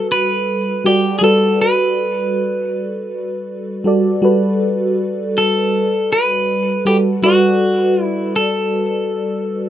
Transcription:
Already playing: G3 F#4 A4 B4
0.12 B4
0.84 G3 F#4 G4 A4 D5
1.19 G3 F#4 G#4
1.23 A4 B4
1.62 B4
3.84 G3 F#4 A4 D5
4.22 G3 F#4 A4 B4
5.38 A4
6.13 B4
6.85 G3 F#4 G4 A4 B4
7.22 G3 F#4 A4 D5
8.04 E4
8.36 A4

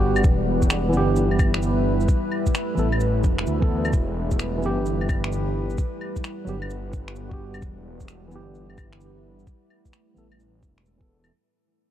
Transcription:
Already playing: G1 G3 B3 F#4 G4 B4 F#5
0.16 claves, shaker
0.24 E1 E4 B4, kick, shaker
0.62 kick, shaker
0.70 finger snap, shaker
0.89 G1 E3, shaker
0.93 B3 G4
1.16 shaker
1.31 claves
1.39 kick, claves, shaker
1.54 finger snap
1.62 shaker
2.01 shaker
2.09 A3, kick, shaker
2.32 claves
2.47 kick, shaker
2.55 finger snap, shaker
2.75 A1 E3 B3 A4, shaker
2.92 claves
3.00 shaker
3.24 E1, kick, shaker
3.38 finger snap
3.47 D2, shaker
3.60 E3 B3 A4, kick
3.85 claves, shaker
3.93 E1 G3 B4, kick, shaker
4.31 kick, shaker
4.39 finger snap, shaker
4.58 E3
4.62 G1 B3 G4, shaker
4.86 shaker
5.01 claves
5.09 kick, claves, shaker
5.24 finger snap
5.32 shaker
5.70 shaker
5.78 G3 F#5, kick, shaker
6.01 claves
6.16 kick, shaker
6.24 finger snap, shaker
6.45 G1 F#3 B3, shaker
6.49 G4
6.62 claves
6.70 shaker
6.93 kick, shaker
7.08 finger snap
7.16 shaker
7.29 B3 F#4, kick
7.33 G4
7.54 claves, shaker
7.62 E1 E4 B4, kick, shaker
8.00 kick, shaker
8.08 finger snap, shaker
8.28 G1 E3 B3, shaker
8.35 G4
8.55 shaker
8.70 claves
8.78 kick, claves, shaker
8.93 finger snap
9.01 shaker
9.39 shaker
9.47 A3, kick, shaker
9.70 claves
9.85 kick, shaker
9.93 finger snap, shaker
10.14 A1 E3 B3, shaker
10.18 A4
10.31 claves
10.40 shaker
10.63 E1, kick, shaker
10.78 finger snap
10.85 E1, shaker
10.98 E3 B3 A4, kick
11.24 claves, shaker

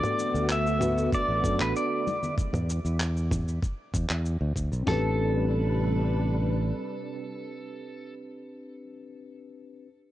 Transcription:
Already playing: D3 A3 B3 D4 F#4 A4 D5
0.03 mid tom, cabasa
0.19 cabasa
0.34 D2, cabasa
0.49 E5, clap, cabasa
0.67 cabasa
0.80 B3 D4 F#4 B4, mid tom, cabasa
0.98 cabasa
1.12 D5, kick, cabasa
1.28 A1
1.42 F#2 B3 D4 F#4 A4, kick, cabasa
1.59 A1 B4, clap, cabasa
1.76 D5, cabasa
2.07 G#3 E4, high conga, cabasa
2.23 low conga, cabasa
2.38 kick, cabasa
2.53 E2, mid tom, cabasa
2.70 cabasa
2.85 E2, cabasa
3.00 clap, cabasa
3.17 cabasa
3.31 kick, mid tom, cabasa
3.48 cabasa
3.62 kick, cabasa
3.94 E2, kick, cabasa
4.10 E2, clap, cabasa
4.26 cabasa
4.41 D2
4.56 D2, kick, cabasa
4.72 B1, cabasa
4.83 C4 D4
4.87 A1 C3 G3 D4 G4 A4 B4, snare, floor tom
4.92 B4

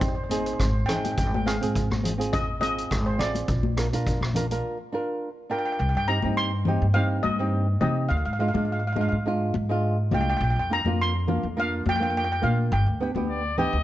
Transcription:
Already playing: G#1 C4 D#4 G4
0.00 C5, kick, closed hi-hat
0.08 C5
0.15 C5
0.24 C5
0.29 C4 D#4 G#4 C5, closed hi-hat, high conga
0.39 C5
0.46 C5, closed hi-hat
0.53 C5
0.59 G#1 C5, kick, cross-stick, closed hi-hat
0.70 C5
0.86 C4 D#4 G#4 G5, cross-stick, closed hi-hat, low conga
0.96 G5
1.04 G5, closed hi-hat, high conga
1.12 G5
1.17 G#1 G5, kick, closed hi-hat
1.27 G5
1.34 G5, high conga
1.45 C4 F4 G#4 F5, cross-stick, closed hi-hat
1.61 G#2 C4 F4 G#4, closed hi-hat
1.75 kick, closed hi-hat
1.90 G#1, cross-stick, high conga
2.03 C4 F4 G#4, closed hi-hat, low conga
2.18 C4 F4 G#4, closed hi-hat
2.33 D#5, kick, closed hi-hat
2.60 C4 F4 G#4 D#5, closed hi-hat, high conga
2.78 closed hi-hat
2.91 G#1, kick, cross-stick, closed hi-hat
3.06 C5
3.18 A1 C4 F4 G#4 D5, cross-stick, closed hi-hat, low conga
3.35 closed hi-hat, high conga
3.48 A#1, kick, closed hi-hat
3.63 high conga
3.77 D4 F4 A#4, cross-stick, closed hi-hat
3.93 A#2 D4 F4 A#4, closed hi-hat
4.07 kick, closed hi-hat
4.21 A#1, cross-stick, high conga
4.34 D4 F4 A#4, closed hi-hat, low conga
4.51 D4 F4 A#4, closed hi-hat
4.92 D4 F4 A#4
5.50 D4 F4 A#4 G5
5.59 G5
5.65 G5
5.72 G5
5.79 C2 G5
5.89 G5
5.95 G2 G5
6.08 C4 D#4 G4 A#5
6.22 G2 C4 D#4 G4, high conga
6.37 C6
6.65 C4 D#4 G4, high conga, low conga
6.82 G2
6.94 C4 D#4 G4 F5
7.23 G2 D#5, high conga
7.39 C4 D#4 G4
7.80 C3 C4 D#4 G4 D#5, high conga, low conga
8.09 D2 F5
8.17 F5
8.25 G#2 F5
8.33 F5
8.39 G#3 D4 F4 F5
8.48 F5
8.53 G#2 G#3 D4 F4 F5, high conga
8.65 F5
8.72 F5
8.80 F5
8.87 F5
8.93 G#3 D4 F5, high conga
8.97 F4 F5
9.09 G#2 F5
9.26 G#3 D4 F4
9.54 G#2, high conga
9.69 G#3 D4 F4
10.11 C2 G#3 D4 F4 G5, high conga, low conga
10.21 G5
10.30 G5
10.37 A#1 G5
10.44 G5
10.50 G5
10.56 F2 G5
10.70 A#3 D4 F4 A#5
10.85 F2 A#3 D4 F4, high conga
11.02 C6
11.27 A#3 D4 F4, high conga, low conga
11.43 F2
11.57 A#3 D4 F4 F5
11.86 F2 G5, high conga
11.96 A#3 G5
12.01 D4 F4 G5
12.10 G5
12.17 G5
12.24 G5
12.32 G5
12.42 A#2 A#3 D4 F4 F5, high conga
12.72 G1 G5
12.86 D2
13.00 B3 D4 G4
13.15 D2 B3 D4 G4, high conga
13.29 D5
13.58 B3 D4 G4 D#5, low conga
13.73 D2

